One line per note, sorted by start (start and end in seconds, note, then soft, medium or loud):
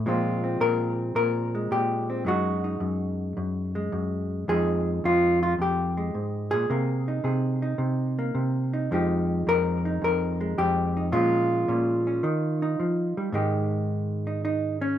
0.06 0.59 A#2 medium
0.06 2.25 F3 soft
0.06 1.54 G#3 soft
0.06 0.42 C4 soft
0.06 0.61 F4 soft
0.44 2.09 C4 soft
0.60 1.14 A#2 medium
0.60 1.15 A#4 loud
1.15 1.70 A#2 medium
1.15 1.71 A#4 medium
1.55 2.26 G#3 soft
1.71 2.26 A#2 medium
1.71 2.27 G4 medium
2.10 2.27 C4 soft
2.25 2.79 F#2 medium
2.25 4.46 F#3 soft
2.25 3.75 G#3 soft
2.25 2.64 D#4 soft
2.25 4.49 F#4 medium
2.64 4.50 D#4 soft
2.80 3.36 F#2 medium
3.37 3.91 F#2 medium
3.75 4.49 G#3 soft
3.92 4.46 F#2 medium
4.48 5.03 F2 medium
4.48 6.68 F3 soft
4.48 5.97 G#3 soft
4.48 7.08 D#4 soft
4.48 5.04 G#4 loud
5.04 5.57 F2 medium
5.04 5.42 F4 medium
5.43 5.53 F4 medium
5.59 6.14 F2 medium
5.59 6.51 G4 medium
5.97 6.70 G#3 soft
6.15 6.53 G#2 medium
6.51 6.69 A#2 soft
6.51 7.23 G#4 medium
6.70 7.23 C3 medium
6.70 8.17 A#3 soft
7.08 7.62 D#4 soft
7.24 7.77 C3 medium
7.24 8.94 G#4 soft
7.62 8.72 D#4 soft
7.78 8.33 C3 medium
8.19 8.89 A#3 soft
8.35 8.88 C3 medium
8.73 8.89 D#4 soft
8.91 9.46 F2 medium
8.91 11.10 F3 soft
8.91 10.39 G#3 soft
8.91 9.84 D#4 soft
8.91 9.48 G4 soft
9.47 10.00 F2 medium
9.47 10.03 A#4 loud
9.85 10.95 D#4 soft
10.02 10.57 F2 medium
10.02 10.58 A#4 medium
10.41 11.13 G#3 soft
10.58 11.13 F2 medium
10.58 11.12 G4 medium
10.97 11.11 D#4 soft
11.12 11.67 A#2 medium
11.12 12.21 F3 soft
11.12 12.23 G#3 soft
11.12 11.68 C#4 soft
11.12 13.33 F4 medium
11.68 12.23 A#2 medium
11.68 12.06 C#4 soft
12.07 12.21 C#4 soft
12.23 12.78 D#3 medium
12.23 12.61 D#4 soft
12.62 13.32 D#4 soft
12.80 13.17 F3 medium
13.17 13.33 G3 medium
13.32 14.98 G#2 medium
13.32 14.98 D#3 soft
13.32 14.98 G#3 soft
13.32 14.26 D#4 soft
13.32 14.98 G4 soft
14.27 14.43 D#4 soft
14.45 14.81 D#4 medium
14.81 14.98 C#4 medium